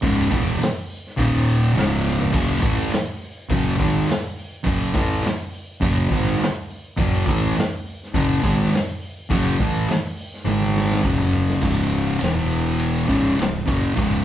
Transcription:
0.03 C#1 C#2 G#2 C#3, kick, open hi-hat
0.31 E1 E2 B2 E3, kick, open hi-hat
0.60 muted distorted electric guitar stroke, muted fingered electric bass stroke, snare, open hi-hat
0.90 open hi-hat
1.07 snare
1.17 D#1 D#2 A#2 D#3, kick, open hi-hat
1.47 open hi-hat
1.74 C#1 C#2 G#2 C#3, open hi-hat
1.79 snare
2.08 snare
2.19 floor tom
2.32 F#1 F#2 C#3 F#3, kick, crash
2.61 A1 A2 E3 A3, kick, open hi-hat
2.91 muted distorted electric guitar stroke, muted fingered electric bass stroke, snare, open hi-hat
3.21 open hi-hat
3.49 F#1 F#2 C#3 F#3, kick, open hi-hat
3.78 G#1 G#2 D#3 G#3, kick, open hi-hat
4.08 muted distorted electric guitar stroke, muted fingered electric bass stroke, snare, open hi-hat
4.37 open hi-hat
4.64 F#1 F#2 C#3 F#3, kick, open hi-hat
4.94 A1 A2 E3 A3, kick, open hi-hat
5.23 muted distorted electric guitar stroke, muted fingered electric bass stroke, snare, open hi-hat
5.53 open hi-hat
5.81 F#1 F#2 C#3 F#3, kick, open hi-hat
6.11 G#1 G#2 D#3 G#3, kick, open hi-hat
6.39 muted distorted electric guitar stroke, muted fingered electric bass stroke, snare, open hi-hat
6.69 open hi-hat
6.97 F#1 F#2 C#3 F#3, kick, open hi-hat
7.26 A1 A2 E3 A3, kick, open hi-hat
7.57 muted distorted electric guitar stroke, muted fingered electric bass stroke, snare, open hi-hat
7.86 open hi-hat
8.03 snare
8.14 F#1 F#2 C#3 F#3, kick, open hi-hat
8.42 G#1 G#2 D#3 G#3, kick, open hi-hat
8.72 muted distorted electric guitar stroke, muted fingered electric bass stroke, snare, open hi-hat
9.01 open hi-hat
9.30 F#1 F#2 C#3 F#3, kick, open hi-hat
9.59 A1 A2 E3 A3, kick, open hi-hat
9.88 muted fingered electric bass stroke, muted distorted electric guitar stroke, snare, open hi-hat
10.17 open hi-hat
10.34 snare
10.45 G#1 G#2 D#3 G#3, high tom
10.59 high tom
10.77 snare
10.91 snare
11.04 F#1 F#2 C#3 F#3, kick
11.18 mid tom
11.32 floor tom
11.50 snare
11.62 C#1 C#2 G#2 C#3, kick, crash
11.92 ride
12.20 E1 E2 B2 E3, snare, ride
12.51 ride
12.80 ride
13.08 C#1 C#2 G#2 C#3, kick, ride
13.37 C#1 C#2 G#2, ride
13.42 snare
13.66 F#1 F#2 C#3 F#3, kick, ride
13.95 C#1 C#2 G#2 C#3, kick, ride

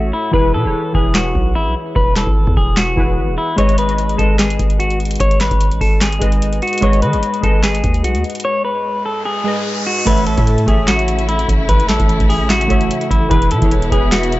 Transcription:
Already playing: A1 A3 F#4 A4 C#5 E5
0.13 E4
0.31 E1 E3 E4 G#4 B4, kick
0.54 B2 A4
0.63 E1 E3 E4 G#4 C#5
0.92 E1 E3 E4 G#4 B4, kick
1.15 F#4, snare, clap
1.35 B1, kick
1.55 G#1 E4
1.66 B1
1.96 E1 B4, kick
2.16 A4, snare, clap
2.27 G#1, kick
2.47 E2, kick
2.57 E1 G#4, kick
2.77 F#4, snare, clap
2.96 E1 E3 E4 G#4 B4, kick
3.18 G#1
3.28 E1
3.38 E4
3.56 G#1 G#3 G#4 B4 C#5 D#5, kick, closed hi-hat
3.69 closed hi-hat
3.78 B4, closed hi-hat
3.87 G#3 G#4 B4 D#5, closed hi-hat
3.98 closed hi-hat
4.09 closed hi-hat
4.16 G#1 G#3 G#4 A4 B4 D#5, kick, closed hi-hat
4.39 G#4, snare, clap, closed hi-hat
4.50 closed hi-hat
4.59 G#1, kick, closed hi-hat
4.70 closed hi-hat
4.80 F#4, closed hi-hat
4.90 closed hi-hat
5.00 closed hi-hat
5.05 closed hi-hat
5.11 closed hi-hat
5.16 closed hi-hat
5.20 G#1 C#5, kick, closed hi-hat
5.31 closed hi-hat
5.40 B4, snare, clap, closed hi-hat
5.51 G#1, kick, closed hi-hat
5.61 closed hi-hat
5.72 A1, closed hi-hat
5.81 G#1 A4, kick, open hi-hat
6.01 G#4, snare, clap, closed hi-hat
6.12 closed hi-hat
6.19 G#1 G#3 G#4 B4 D#5, kick, closed hi-hat
6.32 closed hi-hat
6.42 closed hi-hat
6.53 closed hi-hat
6.62 F#4, closed hi-hat
6.68 closed hi-hat
6.73 closed hi-hat
6.78 G#3, closed hi-hat
6.82 G#1 G#4 B4 C#5 D#5, kick, closed hi-hat
6.93 closed hi-hat
7.02 D#3 B4, closed hi-hat
7.11 G#1 G#3 G#4 B4 D#5, closed hi-hat
7.23 closed hi-hat
7.34 closed hi-hat
7.41 G#1 G#3 G#4 A4 B4 D#5, kick, closed hi-hat
7.63 G#4, snare, clap, closed hi-hat
7.75 closed hi-hat
7.84 D#2, kick, closed hi-hat
7.94 closed hi-hat
8.04 B1 F#4, closed hi-hat
8.15 D#2, closed hi-hat
8.24 closed hi-hat
8.30 closed hi-hat
8.35 closed hi-hat
8.40 closed hi-hat
8.45 C#5, riser
8.65 B4
9.06 A4
9.25 G#4
9.44 G#3 G#4 B4 D#5
9.87 F#4
10.05 A1 C#3 E3 A3 E4 A4 B4 C#5 E5, kick, closed hi-hat, crash
10.18 closed hi-hat
10.27 A4, closed hi-hat
10.35 A2 A3 A4 C#5 E5, kick, closed hi-hat
10.47 closed hi-hat
10.58 closed hi-hat
10.66 A1 A3 G#4 A4 C#5 E5, kick, closed hi-hat
10.88 F#4, snare, clap, closed hi-hat
10.99 closed hi-hat
11.08 closed hi-hat
11.19 closed hi-hat
11.29 E4, closed hi-hat
11.39 closed hi-hat
11.49 A1, kick, closed hi-hat
11.69 A1 B4, kick, closed hi-hat
11.80 closed hi-hat
11.89 A4, snare, clap, closed hi-hat
12.00 A1, kick, closed hi-hat
12.09 closed hi-hat
12.20 A1, kick, closed hi-hat
12.29 G#4, open hi-hat
12.50 F#4, snare, clap, closed hi-hat
12.61 closed hi-hat
12.68 A1 A3 A4 C#5 E5, kick, closed hi-hat
12.81 closed hi-hat
12.91 closed hi-hat
13.01 closed hi-hat
13.11 A1 E4, kick, closed hi-hat
13.29 E1 B2 E3 B3 E4 G#4 B4, kick, closed hi-hat
13.42 closed hi-hat
13.51 B2 A4, closed hi-hat
13.61 E1 E3 E4 G#4 C#5, kick, closed hi-hat
13.71 closed hi-hat
13.82 closed hi-hat
13.90 E1 E3 E4 G#4 B4, kick, closed hi-hat
14.12 F#4, snare, clap, closed hi-hat
14.23 closed hi-hat
14.32 closed hi-hat

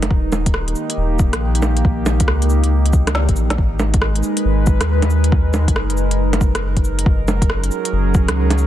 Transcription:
Already playing: G#3 D#4 A#4 B4
0.03 closed hi-hat, low bongo
0.11 D#1 D#3, kick
0.30 G4, low bongo, cabasa
0.42 A#3
0.46 kick, closed hi-hat
0.54 cross-stick
0.68 closed hi-hat
0.76 cabasa
0.90 closed hi-hat
0.98 D#1
1.19 kick, cabasa
1.33 A#1, cross-stick, closed hi-hat
1.55 closed hi-hat
1.62 low bongo, cabasa
1.77 closed hi-hat
1.85 kick
2.06 low bongo, cabasa
2.20 C#2, kick, closed hi-hat
2.28 cross-stick
2.42 closed hi-hat
2.50 cabasa
2.64 closed hi-hat
2.86 closed hi-hat
2.93 kick, cabasa
3.07 cross-stick, closed hi-hat, low bongo
3.15 snare
3.29 G1, kick, closed hi-hat
3.36 A#1, cabasa
3.50 snare, closed hi-hat, low bongo
3.58 G#1 G#3, kick
3.76 A#4, low bongo, cabasa
3.90 B4, kick, closed hi-hat
4.02 cross-stick
4.16 closed hi-hat
4.23 cabasa
4.37 closed hi-hat
4.45 G#1
4.67 kick, cabasa
4.81 D#2, cross-stick, closed hi-hat, low bongo
5.02 closed hi-hat, low bongo
5.10 cabasa
5.24 closed hi-hat
5.32 kick
5.54 low bongo, cabasa
5.68 F#1, kick, closed hi-hat
5.76 cross-stick
5.90 closed hi-hat
5.97 cabasa
6.11 closed hi-hat
6.33 closed hi-hat, low bongo
6.41 kick, cabasa
6.55 cross-stick, closed hi-hat
6.77 kick, closed hi-hat
6.85 cabasa
6.99 closed hi-hat
7.06 F#1 F#3, kick
7.26 C#4 G#4, low bongo, cabasa
7.42 kick, closed hi-hat
7.50 cross-stick
7.64 closed hi-hat
7.71 cabasa
7.85 closed hi-hat
7.93 F#1
8.14 kick, cabasa
8.28 C#2, cross-stick, closed hi-hat, low bongo
8.50 closed hi-hat, low bongo
8.58 cabasa

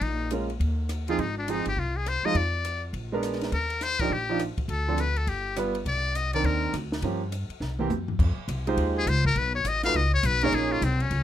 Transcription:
0.01 A#1 D#4, kick, ride
0.31 G#3 C#4 F4 A#4, hi-hat pedal, ride
0.50 ride
0.60 D#2, kick, ride
0.89 cross-stick, hi-hat pedal, ride
1.08 F3 C4 D#4 F4 G#4, ride
1.18 G#1 D#4, kick, ride
1.38 D4
1.48 F3 C4 D#4 G#4, hi-hat pedal, ride
1.65 G1 G4, ride
1.76 C2 F4, kick
1.97 G#4
2.06 C5, cross-stick, hi-hat pedal, ride
2.23 F3 G#3 D#4 F4 D#5, muted upright bass stroke
2.34 F2 D5, kick, ride
2.65 hi-hat pedal, ride
2.93 A#1, kick, ride
3.12 G#3 B3 D4 A#4
3.23 cross-stick, hi-hat pedal, ride
3.33 snare
3.41 snare, ride
3.52 D#2 A#4, kick, ride
3.70 ride
3.81 C5, snare, hi-hat pedal, ride
3.99 F3 D4 D#4 G4 A#4, kick, ride
4.10 A#1 G4, kick
4.29 F3 D4 D#4 F4
4.39 cross-stick, hi-hat pedal, ride
4.57 muted upright bass stroke, kick, ride
4.68 D2 A4, kick, ride
4.88 F3 C4 D4 A4
4.98 B4, hi-hat pedal, ride
5.16 A4, ride
5.27 G1 G4, kick, ride
5.56 G3 B3 F4 B4, cross-stick, hi-hat pedal, ride
5.75 ride
5.85 C2 D5, kick, ride
6.15 D#5, hi-hat pedal, ride
6.33 D#3 C4 D4 A#4 D5, ride
6.44 D#2 A#4, kick, ride
6.73 D2, cross-stick, hi-hat pedal, ride
6.92 snare
7.02 G2 F3 A#3 C#4 G4, kick, ride
7.32 hi-hat pedal, ride
7.49 muted upright bass stroke, ride
7.60 C2, snare
7.79 E3 A#3 C4 G4, high tom
7.90 F#2, hi-hat pedal, high tom
8.08 floor tom
8.19 F2, kick, crash
8.37 muted upright bass stroke
8.48 C2, kick, hi-hat pedal, ride
8.67 G#3 D#4 F4 G4 C5, ride
8.77 D#2, kick, ride
8.98 G#4
9.06 C#2 C5, kick, hi-hat pedal, ride
9.25 A#4, kick
9.35 B1 B4, kick, ride
9.55 C#5
9.64 A1 D#5, kick, hi-hat pedal, ride
9.83 A3 D#4 F4 F#4 B4 F5, snare, ride
9.94 C#2 D#5, kick, ride
10.14 C#5
10.23 B1 B4, kick, hi-hat pedal, ride
10.41 A#3 C#4 D#4 G#4 A#4 C#5, ride
10.52 A#1 G#4, kick, ride
10.72 F4
10.81 C2 C4, kick, hi-hat pedal, ride
11.00 C#4, ride
11.10 C#2, kick, ride

